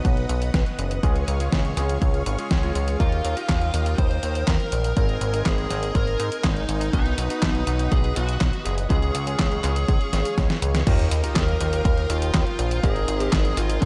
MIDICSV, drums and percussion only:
0, 0, Header, 1, 2, 480
1, 0, Start_track
1, 0, Tempo, 491803
1, 1007, Time_signature, 4, 2, 24, 8
1, 13520, End_track
2, 0, Start_track
2, 0, Title_t, "Drums"
2, 47, Note_on_c, 9, 36, 121
2, 48, Note_on_c, 9, 42, 51
2, 145, Note_off_c, 9, 36, 0
2, 145, Note_off_c, 9, 42, 0
2, 167, Note_on_c, 9, 42, 25
2, 265, Note_off_c, 9, 42, 0
2, 287, Note_on_c, 9, 42, 91
2, 385, Note_off_c, 9, 42, 0
2, 407, Note_on_c, 9, 42, 49
2, 505, Note_off_c, 9, 42, 0
2, 527, Note_on_c, 9, 38, 121
2, 527, Note_on_c, 9, 42, 50
2, 528, Note_on_c, 9, 36, 127
2, 625, Note_off_c, 9, 36, 0
2, 625, Note_off_c, 9, 38, 0
2, 625, Note_off_c, 9, 42, 0
2, 647, Note_on_c, 9, 42, 27
2, 745, Note_off_c, 9, 42, 0
2, 768, Note_on_c, 9, 42, 87
2, 865, Note_off_c, 9, 42, 0
2, 888, Note_on_c, 9, 42, 51
2, 986, Note_off_c, 9, 42, 0
2, 1008, Note_on_c, 9, 36, 121
2, 1009, Note_on_c, 9, 42, 48
2, 1105, Note_off_c, 9, 36, 0
2, 1106, Note_off_c, 9, 42, 0
2, 1128, Note_on_c, 9, 42, 25
2, 1226, Note_off_c, 9, 42, 0
2, 1248, Note_on_c, 9, 42, 88
2, 1346, Note_off_c, 9, 42, 0
2, 1368, Note_on_c, 9, 42, 50
2, 1466, Note_off_c, 9, 42, 0
2, 1488, Note_on_c, 9, 36, 119
2, 1488, Note_on_c, 9, 38, 123
2, 1488, Note_on_c, 9, 42, 49
2, 1586, Note_off_c, 9, 36, 0
2, 1586, Note_off_c, 9, 38, 0
2, 1586, Note_off_c, 9, 42, 0
2, 1609, Note_on_c, 9, 42, 24
2, 1706, Note_off_c, 9, 42, 0
2, 1729, Note_on_c, 9, 38, 38
2, 1729, Note_on_c, 9, 42, 92
2, 1826, Note_off_c, 9, 38, 0
2, 1826, Note_off_c, 9, 42, 0
2, 1849, Note_on_c, 9, 42, 50
2, 1947, Note_off_c, 9, 42, 0
2, 1968, Note_on_c, 9, 36, 123
2, 1968, Note_on_c, 9, 42, 52
2, 2066, Note_off_c, 9, 36, 0
2, 2066, Note_off_c, 9, 42, 0
2, 2089, Note_on_c, 9, 42, 25
2, 2186, Note_off_c, 9, 42, 0
2, 2208, Note_on_c, 9, 42, 89
2, 2306, Note_off_c, 9, 42, 0
2, 2328, Note_on_c, 9, 42, 49
2, 2426, Note_off_c, 9, 42, 0
2, 2448, Note_on_c, 9, 36, 124
2, 2448, Note_on_c, 9, 38, 118
2, 2448, Note_on_c, 9, 42, 49
2, 2546, Note_off_c, 9, 36, 0
2, 2546, Note_off_c, 9, 38, 0
2, 2546, Note_off_c, 9, 42, 0
2, 2569, Note_on_c, 9, 42, 25
2, 2666, Note_off_c, 9, 42, 0
2, 2688, Note_on_c, 9, 42, 89
2, 2786, Note_off_c, 9, 42, 0
2, 2808, Note_on_c, 9, 42, 49
2, 2906, Note_off_c, 9, 42, 0
2, 2928, Note_on_c, 9, 36, 112
2, 2928, Note_on_c, 9, 42, 50
2, 3026, Note_off_c, 9, 36, 0
2, 3026, Note_off_c, 9, 42, 0
2, 3048, Note_on_c, 9, 42, 25
2, 3146, Note_off_c, 9, 42, 0
2, 3168, Note_on_c, 9, 42, 91
2, 3266, Note_off_c, 9, 42, 0
2, 3288, Note_on_c, 9, 42, 50
2, 3386, Note_off_c, 9, 42, 0
2, 3408, Note_on_c, 9, 36, 113
2, 3408, Note_on_c, 9, 38, 119
2, 3408, Note_on_c, 9, 39, 86
2, 3408, Note_on_c, 9, 42, 53
2, 3506, Note_off_c, 9, 36, 0
2, 3506, Note_off_c, 9, 38, 0
2, 3506, Note_off_c, 9, 39, 0
2, 3506, Note_off_c, 9, 42, 0
2, 3528, Note_on_c, 9, 42, 25
2, 3626, Note_off_c, 9, 42, 0
2, 3648, Note_on_c, 9, 42, 93
2, 3746, Note_off_c, 9, 42, 0
2, 3768, Note_on_c, 9, 42, 50
2, 3866, Note_off_c, 9, 42, 0
2, 3888, Note_on_c, 9, 36, 121
2, 3888, Note_on_c, 9, 42, 50
2, 3986, Note_off_c, 9, 36, 0
2, 3986, Note_off_c, 9, 42, 0
2, 4009, Note_on_c, 9, 42, 25
2, 4106, Note_off_c, 9, 42, 0
2, 4128, Note_on_c, 9, 42, 87
2, 4226, Note_off_c, 9, 42, 0
2, 4248, Note_on_c, 9, 42, 49
2, 4346, Note_off_c, 9, 42, 0
2, 4368, Note_on_c, 9, 36, 117
2, 4369, Note_on_c, 9, 38, 117
2, 4369, Note_on_c, 9, 39, 83
2, 4369, Note_on_c, 9, 42, 51
2, 4466, Note_off_c, 9, 36, 0
2, 4466, Note_off_c, 9, 38, 0
2, 4466, Note_off_c, 9, 39, 0
2, 4466, Note_off_c, 9, 42, 0
2, 4488, Note_on_c, 9, 42, 26
2, 4586, Note_off_c, 9, 42, 0
2, 4608, Note_on_c, 9, 42, 82
2, 4705, Note_off_c, 9, 42, 0
2, 4727, Note_on_c, 9, 42, 50
2, 4825, Note_off_c, 9, 42, 0
2, 4847, Note_on_c, 9, 42, 51
2, 4848, Note_on_c, 9, 36, 117
2, 4945, Note_off_c, 9, 42, 0
2, 4946, Note_off_c, 9, 36, 0
2, 4968, Note_on_c, 9, 42, 27
2, 5065, Note_off_c, 9, 42, 0
2, 5088, Note_on_c, 9, 42, 89
2, 5185, Note_off_c, 9, 42, 0
2, 5208, Note_on_c, 9, 42, 54
2, 5306, Note_off_c, 9, 42, 0
2, 5327, Note_on_c, 9, 38, 115
2, 5327, Note_on_c, 9, 39, 90
2, 5327, Note_on_c, 9, 42, 53
2, 5328, Note_on_c, 9, 36, 109
2, 5425, Note_off_c, 9, 36, 0
2, 5425, Note_off_c, 9, 38, 0
2, 5425, Note_off_c, 9, 39, 0
2, 5425, Note_off_c, 9, 42, 0
2, 5448, Note_on_c, 9, 42, 26
2, 5545, Note_off_c, 9, 42, 0
2, 5568, Note_on_c, 9, 38, 36
2, 5568, Note_on_c, 9, 42, 89
2, 5666, Note_off_c, 9, 38, 0
2, 5666, Note_off_c, 9, 42, 0
2, 5688, Note_on_c, 9, 42, 52
2, 5786, Note_off_c, 9, 42, 0
2, 5807, Note_on_c, 9, 36, 117
2, 5808, Note_on_c, 9, 42, 53
2, 5905, Note_off_c, 9, 36, 0
2, 5905, Note_off_c, 9, 42, 0
2, 5928, Note_on_c, 9, 42, 26
2, 6025, Note_off_c, 9, 42, 0
2, 6048, Note_on_c, 9, 42, 91
2, 6145, Note_off_c, 9, 42, 0
2, 6167, Note_on_c, 9, 42, 50
2, 6265, Note_off_c, 9, 42, 0
2, 6287, Note_on_c, 9, 36, 110
2, 6287, Note_on_c, 9, 38, 112
2, 6287, Note_on_c, 9, 39, 87
2, 6287, Note_on_c, 9, 42, 52
2, 6385, Note_off_c, 9, 36, 0
2, 6385, Note_off_c, 9, 38, 0
2, 6385, Note_off_c, 9, 39, 0
2, 6385, Note_off_c, 9, 42, 0
2, 6407, Note_on_c, 9, 42, 27
2, 6505, Note_off_c, 9, 42, 0
2, 6527, Note_on_c, 9, 42, 87
2, 6625, Note_off_c, 9, 42, 0
2, 6647, Note_on_c, 9, 42, 53
2, 6745, Note_off_c, 9, 42, 0
2, 6767, Note_on_c, 9, 36, 107
2, 6767, Note_on_c, 9, 42, 55
2, 6865, Note_off_c, 9, 36, 0
2, 6865, Note_off_c, 9, 42, 0
2, 6887, Note_on_c, 9, 42, 27
2, 6985, Note_off_c, 9, 42, 0
2, 7007, Note_on_c, 9, 42, 96
2, 7105, Note_off_c, 9, 42, 0
2, 7127, Note_on_c, 9, 42, 55
2, 7225, Note_off_c, 9, 42, 0
2, 7247, Note_on_c, 9, 36, 106
2, 7247, Note_on_c, 9, 38, 119
2, 7247, Note_on_c, 9, 39, 88
2, 7247, Note_on_c, 9, 42, 53
2, 7344, Note_off_c, 9, 38, 0
2, 7344, Note_off_c, 9, 39, 0
2, 7344, Note_off_c, 9, 42, 0
2, 7345, Note_off_c, 9, 36, 0
2, 7367, Note_on_c, 9, 42, 27
2, 7464, Note_off_c, 9, 42, 0
2, 7487, Note_on_c, 9, 42, 98
2, 7584, Note_off_c, 9, 42, 0
2, 7607, Note_on_c, 9, 42, 52
2, 7704, Note_off_c, 9, 42, 0
2, 7727, Note_on_c, 9, 36, 117
2, 7727, Note_on_c, 9, 42, 55
2, 7824, Note_off_c, 9, 42, 0
2, 7825, Note_off_c, 9, 36, 0
2, 7847, Note_on_c, 9, 42, 27
2, 7945, Note_off_c, 9, 42, 0
2, 7967, Note_on_c, 9, 42, 93
2, 8065, Note_off_c, 9, 42, 0
2, 8087, Note_on_c, 9, 42, 53
2, 8185, Note_off_c, 9, 42, 0
2, 8207, Note_on_c, 9, 36, 109
2, 8207, Note_on_c, 9, 38, 110
2, 8207, Note_on_c, 9, 39, 87
2, 8207, Note_on_c, 9, 42, 54
2, 8305, Note_off_c, 9, 36, 0
2, 8305, Note_off_c, 9, 38, 0
2, 8305, Note_off_c, 9, 39, 0
2, 8305, Note_off_c, 9, 42, 0
2, 8328, Note_on_c, 9, 42, 28
2, 8425, Note_off_c, 9, 42, 0
2, 8447, Note_on_c, 9, 42, 97
2, 8545, Note_off_c, 9, 42, 0
2, 8568, Note_on_c, 9, 42, 54
2, 8665, Note_off_c, 9, 42, 0
2, 8688, Note_on_c, 9, 36, 114
2, 8688, Note_on_c, 9, 42, 55
2, 8785, Note_off_c, 9, 36, 0
2, 8785, Note_off_c, 9, 42, 0
2, 8807, Note_on_c, 9, 42, 28
2, 8905, Note_off_c, 9, 42, 0
2, 8927, Note_on_c, 9, 42, 102
2, 9025, Note_off_c, 9, 42, 0
2, 9048, Note_on_c, 9, 42, 58
2, 9146, Note_off_c, 9, 42, 0
2, 9168, Note_on_c, 9, 36, 113
2, 9168, Note_on_c, 9, 38, 115
2, 9168, Note_on_c, 9, 39, 94
2, 9168, Note_on_c, 9, 42, 58
2, 9265, Note_off_c, 9, 36, 0
2, 9265, Note_off_c, 9, 38, 0
2, 9265, Note_off_c, 9, 39, 0
2, 9265, Note_off_c, 9, 42, 0
2, 9288, Note_on_c, 9, 42, 26
2, 9385, Note_off_c, 9, 42, 0
2, 9408, Note_on_c, 9, 38, 35
2, 9408, Note_on_c, 9, 39, 52
2, 9408, Note_on_c, 9, 42, 95
2, 9505, Note_off_c, 9, 38, 0
2, 9505, Note_off_c, 9, 39, 0
2, 9505, Note_off_c, 9, 42, 0
2, 9527, Note_on_c, 9, 42, 56
2, 9625, Note_off_c, 9, 42, 0
2, 9647, Note_on_c, 9, 42, 57
2, 9648, Note_on_c, 9, 36, 117
2, 9745, Note_off_c, 9, 42, 0
2, 9746, Note_off_c, 9, 36, 0
2, 9767, Note_on_c, 9, 42, 28
2, 9865, Note_off_c, 9, 42, 0
2, 9887, Note_on_c, 9, 38, 61
2, 9887, Note_on_c, 9, 42, 99
2, 9985, Note_off_c, 9, 38, 0
2, 9985, Note_off_c, 9, 42, 0
2, 10007, Note_on_c, 9, 42, 52
2, 10105, Note_off_c, 9, 42, 0
2, 10128, Note_on_c, 9, 36, 114
2, 10128, Note_on_c, 9, 38, 76
2, 10128, Note_on_c, 9, 42, 57
2, 10225, Note_off_c, 9, 36, 0
2, 10226, Note_off_c, 9, 38, 0
2, 10226, Note_off_c, 9, 42, 0
2, 10248, Note_on_c, 9, 38, 74
2, 10248, Note_on_c, 9, 42, 29
2, 10346, Note_off_c, 9, 38, 0
2, 10346, Note_off_c, 9, 42, 0
2, 10368, Note_on_c, 9, 42, 96
2, 10466, Note_off_c, 9, 42, 0
2, 10488, Note_on_c, 9, 38, 88
2, 10488, Note_on_c, 9, 42, 56
2, 10586, Note_off_c, 9, 38, 0
2, 10586, Note_off_c, 9, 42, 0
2, 10608, Note_on_c, 9, 36, 119
2, 10608, Note_on_c, 9, 42, 58
2, 10608, Note_on_c, 9, 49, 107
2, 10705, Note_off_c, 9, 36, 0
2, 10706, Note_off_c, 9, 42, 0
2, 10706, Note_off_c, 9, 49, 0
2, 10728, Note_on_c, 9, 42, 28
2, 10826, Note_off_c, 9, 42, 0
2, 10848, Note_on_c, 9, 42, 95
2, 10945, Note_off_c, 9, 42, 0
2, 10967, Note_on_c, 9, 42, 56
2, 11065, Note_off_c, 9, 42, 0
2, 11088, Note_on_c, 9, 36, 114
2, 11088, Note_on_c, 9, 38, 126
2, 11088, Note_on_c, 9, 39, 97
2, 11088, Note_on_c, 9, 42, 58
2, 11185, Note_off_c, 9, 36, 0
2, 11186, Note_off_c, 9, 38, 0
2, 11186, Note_off_c, 9, 39, 0
2, 11186, Note_off_c, 9, 42, 0
2, 11208, Note_on_c, 9, 42, 28
2, 11305, Note_off_c, 9, 42, 0
2, 11327, Note_on_c, 9, 42, 101
2, 11425, Note_off_c, 9, 42, 0
2, 11447, Note_on_c, 9, 42, 55
2, 11545, Note_off_c, 9, 42, 0
2, 11567, Note_on_c, 9, 36, 126
2, 11567, Note_on_c, 9, 42, 57
2, 11665, Note_off_c, 9, 36, 0
2, 11665, Note_off_c, 9, 42, 0
2, 11687, Note_on_c, 9, 42, 28
2, 11785, Note_off_c, 9, 42, 0
2, 11807, Note_on_c, 9, 42, 95
2, 11905, Note_off_c, 9, 42, 0
2, 11927, Note_on_c, 9, 42, 52
2, 12025, Note_off_c, 9, 42, 0
2, 12047, Note_on_c, 9, 36, 121
2, 12047, Note_on_c, 9, 38, 118
2, 12047, Note_on_c, 9, 39, 92
2, 12047, Note_on_c, 9, 42, 56
2, 12145, Note_off_c, 9, 36, 0
2, 12145, Note_off_c, 9, 38, 0
2, 12145, Note_off_c, 9, 39, 0
2, 12145, Note_off_c, 9, 42, 0
2, 12167, Note_on_c, 9, 42, 29
2, 12265, Note_off_c, 9, 42, 0
2, 12287, Note_on_c, 9, 42, 94
2, 12385, Note_off_c, 9, 42, 0
2, 12408, Note_on_c, 9, 42, 57
2, 12505, Note_off_c, 9, 42, 0
2, 12527, Note_on_c, 9, 36, 121
2, 12527, Note_on_c, 9, 42, 54
2, 12625, Note_off_c, 9, 36, 0
2, 12625, Note_off_c, 9, 42, 0
2, 12648, Note_on_c, 9, 42, 28
2, 12745, Note_off_c, 9, 42, 0
2, 12767, Note_on_c, 9, 42, 97
2, 12865, Note_off_c, 9, 42, 0
2, 12887, Note_on_c, 9, 42, 57
2, 12985, Note_off_c, 9, 42, 0
2, 13007, Note_on_c, 9, 36, 123
2, 13007, Note_on_c, 9, 38, 124
2, 13007, Note_on_c, 9, 39, 95
2, 13007, Note_on_c, 9, 42, 56
2, 13104, Note_off_c, 9, 36, 0
2, 13105, Note_off_c, 9, 38, 0
2, 13105, Note_off_c, 9, 39, 0
2, 13105, Note_off_c, 9, 42, 0
2, 13127, Note_on_c, 9, 42, 27
2, 13225, Note_off_c, 9, 42, 0
2, 13247, Note_on_c, 9, 42, 93
2, 13344, Note_off_c, 9, 42, 0
2, 13367, Note_on_c, 9, 42, 56
2, 13464, Note_off_c, 9, 42, 0
2, 13487, Note_on_c, 9, 36, 125
2, 13487, Note_on_c, 9, 42, 54
2, 13520, Note_off_c, 9, 36, 0
2, 13520, Note_off_c, 9, 42, 0
2, 13520, End_track
0, 0, End_of_file